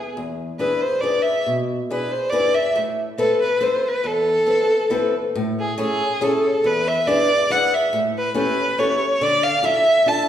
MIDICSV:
0, 0, Header, 1, 3, 480
1, 0, Start_track
1, 0, Key_signature, 0, "minor"
1, 0, Tempo, 431965
1, 182, Time_signature, 3, 2, 24, 8
1, 5946, Key_signature, 3, "major"
1, 6900, Tempo, 426439
1, 11487, End_track
2, 0, Start_track
2, 0, Title_t, "Violin"
2, 0, Program_c, 0, 40
2, 0, Note_on_c, 0, 68, 58
2, 170, Note_off_c, 0, 68, 0
2, 665, Note_on_c, 0, 71, 71
2, 904, Note_on_c, 0, 72, 69
2, 921, Note_off_c, 0, 71, 0
2, 1122, Note_on_c, 0, 74, 77
2, 1139, Note_off_c, 0, 72, 0
2, 1357, Note_on_c, 0, 76, 80
2, 1374, Note_off_c, 0, 74, 0
2, 1606, Note_off_c, 0, 76, 0
2, 2133, Note_on_c, 0, 71, 75
2, 2353, Note_on_c, 0, 72, 76
2, 2370, Note_off_c, 0, 71, 0
2, 2555, Note_on_c, 0, 74, 89
2, 2571, Note_off_c, 0, 72, 0
2, 2826, Note_on_c, 0, 76, 79
2, 2842, Note_off_c, 0, 74, 0
2, 3056, Note_off_c, 0, 76, 0
2, 3542, Note_on_c, 0, 69, 92
2, 3779, Note_off_c, 0, 69, 0
2, 3803, Note_on_c, 0, 71, 83
2, 4032, Note_on_c, 0, 72, 75
2, 4049, Note_off_c, 0, 71, 0
2, 4314, Note_on_c, 0, 71, 86
2, 4331, Note_off_c, 0, 72, 0
2, 4515, Note_on_c, 0, 69, 106
2, 4531, Note_off_c, 0, 71, 0
2, 5732, Note_off_c, 0, 69, 0
2, 6215, Note_on_c, 0, 68, 68
2, 6416, Note_off_c, 0, 68, 0
2, 6444, Note_on_c, 0, 68, 87
2, 6924, Note_on_c, 0, 69, 76
2, 6941, Note_off_c, 0, 68, 0
2, 7413, Note_on_c, 0, 71, 88
2, 7430, Note_off_c, 0, 69, 0
2, 7658, Note_on_c, 0, 76, 81
2, 7675, Note_off_c, 0, 71, 0
2, 7868, Note_on_c, 0, 74, 100
2, 7885, Note_off_c, 0, 76, 0
2, 8369, Note_on_c, 0, 78, 85
2, 8386, Note_off_c, 0, 74, 0
2, 8624, Note_on_c, 0, 76, 74
2, 8641, Note_off_c, 0, 78, 0
2, 8831, Note_off_c, 0, 76, 0
2, 9118, Note_on_c, 0, 71, 82
2, 9304, Note_off_c, 0, 71, 0
2, 9345, Note_on_c, 0, 71, 93
2, 9803, Note_on_c, 0, 73, 86
2, 9820, Note_off_c, 0, 71, 0
2, 10302, Note_on_c, 0, 74, 102
2, 10319, Note_off_c, 0, 73, 0
2, 10531, Note_on_c, 0, 77, 87
2, 10548, Note_off_c, 0, 74, 0
2, 10769, Note_on_c, 0, 76, 99
2, 10786, Note_off_c, 0, 77, 0
2, 11259, Note_on_c, 0, 81, 86
2, 11275, Note_off_c, 0, 76, 0
2, 11487, Note_off_c, 0, 81, 0
2, 11487, End_track
3, 0, Start_track
3, 0, Title_t, "Steel-string acoustic guitar"
3, 0, Program_c, 1, 25
3, 188, Note_on_c, 1, 40, 61
3, 553, Note_off_c, 1, 40, 0
3, 657, Note_on_c, 1, 62, 53
3, 662, Note_on_c, 1, 68, 52
3, 668, Note_on_c, 1, 64, 48
3, 669, Note_on_c, 1, 71, 68
3, 923, Note_off_c, 1, 64, 0
3, 923, Note_off_c, 1, 68, 0
3, 924, Note_off_c, 1, 62, 0
3, 928, Note_off_c, 1, 71, 0
3, 1136, Note_on_c, 1, 62, 60
3, 1147, Note_on_c, 1, 68, 50
3, 1149, Note_on_c, 1, 71, 64
3, 1153, Note_on_c, 1, 64, 50
3, 1403, Note_off_c, 1, 62, 0
3, 1405, Note_off_c, 1, 64, 0
3, 1405, Note_off_c, 1, 68, 0
3, 1408, Note_off_c, 1, 71, 0
3, 1627, Note_on_c, 1, 47, 62
3, 1993, Note_off_c, 1, 47, 0
3, 2116, Note_on_c, 1, 62, 55
3, 2119, Note_on_c, 1, 68, 52
3, 2127, Note_on_c, 1, 71, 70
3, 2128, Note_on_c, 1, 64, 50
3, 2370, Note_off_c, 1, 68, 0
3, 2371, Note_off_c, 1, 64, 0
3, 2372, Note_off_c, 1, 62, 0
3, 2376, Note_off_c, 1, 71, 0
3, 2581, Note_on_c, 1, 62, 57
3, 2589, Note_on_c, 1, 68, 58
3, 2590, Note_on_c, 1, 64, 42
3, 2594, Note_on_c, 1, 71, 69
3, 2842, Note_off_c, 1, 62, 0
3, 2844, Note_off_c, 1, 64, 0
3, 2845, Note_off_c, 1, 71, 0
3, 2846, Note_off_c, 1, 68, 0
3, 3062, Note_on_c, 1, 45, 69
3, 3423, Note_off_c, 1, 45, 0
3, 3537, Note_on_c, 1, 60, 70
3, 3545, Note_on_c, 1, 71, 74
3, 3547, Note_on_c, 1, 64, 49
3, 3548, Note_on_c, 1, 69, 45
3, 3795, Note_off_c, 1, 60, 0
3, 3798, Note_off_c, 1, 64, 0
3, 3798, Note_off_c, 1, 69, 0
3, 3799, Note_off_c, 1, 71, 0
3, 4006, Note_on_c, 1, 60, 60
3, 4013, Note_on_c, 1, 64, 44
3, 4013, Note_on_c, 1, 69, 58
3, 4017, Note_on_c, 1, 71, 61
3, 4269, Note_off_c, 1, 64, 0
3, 4270, Note_off_c, 1, 60, 0
3, 4273, Note_off_c, 1, 71, 0
3, 4274, Note_off_c, 1, 69, 0
3, 4487, Note_on_c, 1, 40, 66
3, 4855, Note_off_c, 1, 40, 0
3, 4961, Note_on_c, 1, 60, 58
3, 4967, Note_on_c, 1, 69, 52
3, 4974, Note_on_c, 1, 71, 62
3, 4979, Note_on_c, 1, 64, 51
3, 5229, Note_off_c, 1, 60, 0
3, 5232, Note_off_c, 1, 64, 0
3, 5234, Note_off_c, 1, 69, 0
3, 5235, Note_off_c, 1, 71, 0
3, 5446, Note_on_c, 1, 64, 61
3, 5451, Note_on_c, 1, 60, 68
3, 5454, Note_on_c, 1, 69, 64
3, 5460, Note_on_c, 1, 71, 68
3, 5715, Note_off_c, 1, 64, 0
3, 5717, Note_off_c, 1, 60, 0
3, 5720, Note_off_c, 1, 69, 0
3, 5720, Note_off_c, 1, 71, 0
3, 5950, Note_on_c, 1, 45, 81
3, 6310, Note_off_c, 1, 45, 0
3, 6419, Note_on_c, 1, 61, 68
3, 6430, Note_on_c, 1, 64, 56
3, 6432, Note_on_c, 1, 68, 55
3, 6436, Note_on_c, 1, 69, 66
3, 6679, Note_off_c, 1, 61, 0
3, 6681, Note_off_c, 1, 64, 0
3, 6684, Note_off_c, 1, 69, 0
3, 6685, Note_off_c, 1, 68, 0
3, 6903, Note_on_c, 1, 61, 68
3, 6911, Note_on_c, 1, 68, 66
3, 6913, Note_on_c, 1, 64, 43
3, 6919, Note_on_c, 1, 69, 56
3, 7162, Note_off_c, 1, 61, 0
3, 7164, Note_off_c, 1, 64, 0
3, 7166, Note_off_c, 1, 68, 0
3, 7167, Note_off_c, 1, 69, 0
3, 7387, Note_on_c, 1, 40, 65
3, 7749, Note_off_c, 1, 40, 0
3, 7872, Note_on_c, 1, 62, 67
3, 7879, Note_on_c, 1, 68, 59
3, 7881, Note_on_c, 1, 64, 46
3, 7885, Note_on_c, 1, 71, 72
3, 8124, Note_off_c, 1, 62, 0
3, 8126, Note_off_c, 1, 64, 0
3, 8127, Note_off_c, 1, 68, 0
3, 8130, Note_off_c, 1, 71, 0
3, 8355, Note_on_c, 1, 62, 75
3, 8361, Note_on_c, 1, 68, 55
3, 8362, Note_on_c, 1, 71, 66
3, 8367, Note_on_c, 1, 64, 52
3, 8604, Note_off_c, 1, 62, 0
3, 8604, Note_off_c, 1, 68, 0
3, 8607, Note_off_c, 1, 64, 0
3, 8607, Note_off_c, 1, 71, 0
3, 8835, Note_on_c, 1, 45, 70
3, 9189, Note_off_c, 1, 45, 0
3, 9303, Note_on_c, 1, 61, 71
3, 9312, Note_on_c, 1, 64, 54
3, 9312, Note_on_c, 1, 67, 56
3, 9317, Note_on_c, 1, 69, 58
3, 9558, Note_off_c, 1, 61, 0
3, 9559, Note_off_c, 1, 64, 0
3, 9561, Note_off_c, 1, 69, 0
3, 9562, Note_off_c, 1, 67, 0
3, 9797, Note_on_c, 1, 61, 65
3, 9802, Note_on_c, 1, 67, 55
3, 9812, Note_on_c, 1, 69, 72
3, 9816, Note_on_c, 1, 64, 60
3, 10045, Note_off_c, 1, 61, 0
3, 10045, Note_off_c, 1, 67, 0
3, 10046, Note_off_c, 1, 64, 0
3, 10047, Note_off_c, 1, 69, 0
3, 10281, Note_on_c, 1, 50, 77
3, 10632, Note_off_c, 1, 50, 0
3, 10747, Note_on_c, 1, 62, 60
3, 10753, Note_on_c, 1, 65, 51
3, 10759, Note_on_c, 1, 64, 55
3, 10760, Note_on_c, 1, 69, 77
3, 10999, Note_off_c, 1, 62, 0
3, 11003, Note_off_c, 1, 64, 0
3, 11003, Note_off_c, 1, 65, 0
3, 11006, Note_off_c, 1, 69, 0
3, 11234, Note_on_c, 1, 62, 65
3, 11242, Note_on_c, 1, 65, 50
3, 11248, Note_on_c, 1, 69, 74
3, 11250, Note_on_c, 1, 64, 56
3, 11487, Note_off_c, 1, 62, 0
3, 11487, Note_off_c, 1, 64, 0
3, 11487, Note_off_c, 1, 65, 0
3, 11487, Note_off_c, 1, 69, 0
3, 11487, End_track
0, 0, End_of_file